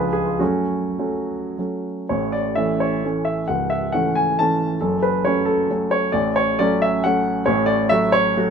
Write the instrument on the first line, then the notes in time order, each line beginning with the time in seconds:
grand piano
Already playing: C#2 F3 G#3 D4 F4 G#4 B4
0.13 G#4
0.26 F4
0.39 F#2 A3 C#4 F#4
0.99 F#3 A3 C#4
1.58 F#3 A3 C#4
2.09 A1 A2 C#5
2.32 D5
2.55 E3 A3 C#4 E5
2.80 C#5
3.04 E3 A3 C#4
3.25 E5
3.48 C#1 C#2 F#5
3.70 E5
3.92 E3 A3 C#4 F#5
4.15 G#5
4.39 E3 A3 C#4 A5
4.81 F#1 F#2 A4
5.03 B4
5.25 F#3 A3 C#4 C#5
5.45 A4
5.70 F#3 A3 C#4
5.91 C#5
6.12 A1 A2 D5
6.36 C#5
6.59 F#3 A3 C#4 D5
6.82 E5
7.04 F#3 A3 C#4 F#5
7.46 A1 A2 C#5
7.66 D5
7.89 F#3 A3 F#4 E5
8.12 C#5
8.37 F#3 A3 F#4